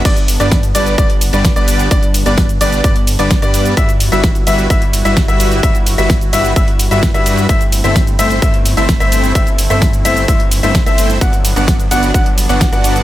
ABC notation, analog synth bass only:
X:1
M:4/4
L:1/16
Q:1/4=129
K:G
V:1 name="Analog synth bass" clef=bass
G,,,3 G,,,3 G,,,2 G,,,3 G,,,2 G,,,3 | G,,,3 G,,,3 G,,,2 G,,,3 G,,,2 G,,3 | G,,,3 G,,,3 G,,,2 G,,,3 G,,,2 G,,,3 | G,,,3 G,,,3 G,,,2 G,,,3 G,,,2 G,,3 |
G,,,3 G,,,3 G,,,2 G,,,3 G,,,2 G,,,3 | G,,,3 G,,,3 G,,,2 G,,,3 G,,,2 G,,,3 | G,,,3 G,,,3 G,,,2 G,,,3 G,,,2 G,,,3 |]